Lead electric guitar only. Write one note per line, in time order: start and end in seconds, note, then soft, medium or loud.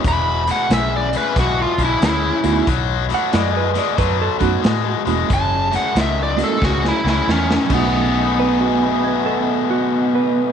0.08 0.49 B5 loud
0.51 0.71 F#5 medium
0.73 0.93 E5 medium
0.97 1.16 D5 medium
1.17 1.37 B4 loud
1.40 1.59 F#4 medium
1.62 1.81 F4 medium
1.85 2.03 E4 medium
2.05 2.67 E4 medium
5.34 5.74 A5 medium
5.76 5.96 F#5 medium
6.01 6.20 E5 medium
6.23 6.42 D5 medium
6.44 6.63 A4 medium
6.65 6.84 F#4 medium
6.88 7.07 E4 medium
7.10 7.29 E4 medium
7.31 7.70 C#4 medium
7.74 10.52 B3 medium